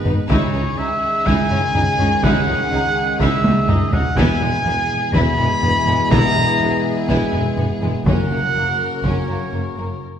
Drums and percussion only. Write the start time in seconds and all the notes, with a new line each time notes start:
0.06 taiko low-mid
0.30 taiko
1.27 taiko
1.51 taiko low-mid
1.75 taiko low-mid
1.99 taiko low-mid
2.23 taiko
3.20 taiko
3.44 taiko high
3.69 taiko low-mid
3.93 taiko low
4.17 taiko
5.14 taiko
5.39 taiko low-mid
5.63 taiko low-mid
5.87 taiko low-mid
6.11 taiko
7.09 taiko
7.33 taiko low-mid
7.58 taiko low-mid
7.82 taiko low-mid
8.06 taiko
9.04 taiko